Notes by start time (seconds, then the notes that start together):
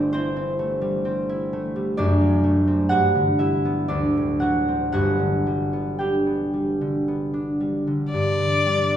Already playing: G1 G2 G3 A3 C4 D4 E4 D5 E5
0.13 C4 E4 C5
0.36 C4
0.59 A3
0.81 G3
1.05 C4
1.29 E4
1.53 A3
1.76 G3
1.97 F#1 F#2 D4 D5
2.21 F#3
2.44 A3
2.67 C4
2.89 G2 F#4 F#5
3.15 D3
3.39 G3 E4 E5
3.65 B3
3.88 D2 D4 D5
4.17 A2
4.40 F#3 F#4 F#5
4.68 C4
4.92 G1 G2 F#4 F#5
5.19 D3
5.46 G3
5.73 B3
5.99 D4 G4 G5
6.26 B3
6.53 G3
6.81 D3
7.08 B3
7.34 D4
7.60 G3
7.87 D3
8.11 G2 D5
8.39 D3
8.66 G3
8.90 B3